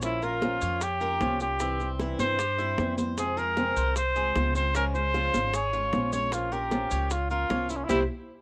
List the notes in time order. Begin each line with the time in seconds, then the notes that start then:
Already playing: A#1 C#5
0.02 F3 A#3 C#4 E4 F4, high bongo, maracas
0.22 A#3 C#4 F4 A#4, high bongo, high conga, maracas
0.41 F3 A#3 C#4 F4, high bongo, high conga, maracas
0.62 F2 C#5, high bongo, maracas
0.81 G4, muted nylon-string guitar stroke, high bongo, high conga, maracas
1.01 A#3 C#4 F4 A#4, high conga, maracas
1.20 C2 F3 A#3 C#4 F4 C#5, high bongo, low bongo, high conga, maracas
1.40 A#3 C#4 F4 G4, high bongo, high conga, maracas
1.60 C3 E3 G3 C4 E4, high bongo, high conga, maracas
1.80 G3 C4 E4, high conga, maracas
1.99 C3 E3 G3 C4 E4, high bongo, high conga, maracas
2.19 G2 C5, high bongo, high conga, maracas
2.39 G4, muted nylon-string guitar stroke, high bongo, high conga, maracas
2.58 G3 C4 E4, high bongo, high conga, maracas
2.78 F2 C3 E3 G3 C4 E4, high bongo, low bongo, high conga, maracas
2.98 G3 C4 E4 C5, high bongo, high conga, maracas
3.17 C3 F3 G#3 C4 F4 G#4, high bongo, high conga, maracas
3.37 G#3 C4 F4 G#4 A#4, high bongo, high conga, maracas
3.57 C3 F3 G#3 C4 F4, high bongo, high conga, maracas
3.76 C2 C5, high bongo, maracas
3.96 C5, muted nylon-string guitar stroke, high bongo, high conga, maracas
4.16 G#3 C4 F4 G#4, high conga, maracas
4.35 C#2 C3 F3 G#3 C4 F4 C5, high bongo, low bongo, high conga, maracas
4.55 G#3 C4 F4 C5, high bongo, high conga, maracas
4.74 C#3 F3 G#3 C#4 F4 A#4, high bongo, high conga, maracas
4.94 G#3 C#4 F4 C5, high conga, maracas
5.13 C#3 F3 G#3 C#4 F4, high bongo, high conga, maracas
5.34 G#1, high bongo, high conga, maracas
5.53 G#4 C#5, muted nylon-string guitar stroke, high bongo, high conga, maracas
5.73 G#3 C#4 F4, high bongo, high conga, maracas
5.93 A#1 C#3 F3 G#3 C#4 F4, high bongo, low bongo, high conga, maracas
6.12 G#3 C#4 F4 C#5, high bongo, high conga, maracas
6.32 F3 A#3 C#4 F4, high bongo, high conga, maracas
6.51 A#3 C#4 F4 G4 A#4, high bongo, high conga, maracas
6.71 F3 A#3 C#4 F4, high bongo, high conga, maracas
6.91 C#2 C#5, high bongo, maracas
7.10 F4, muted nylon-string guitar stroke, high bongo, high conga, maracas
7.30 A#3 C#4 F4 A#4, high conga, maracas
7.49 C2 F3 A#3 C#4 F4 C#5, high bongo, low bongo, high conga, maracas
7.69 A#3 C#4 E4 F4, high bongo, maracas
7.77 C#4
7.84 E4
7.89 C2 G3 C4 E4 G4 C5, low bongo, high conga, maracas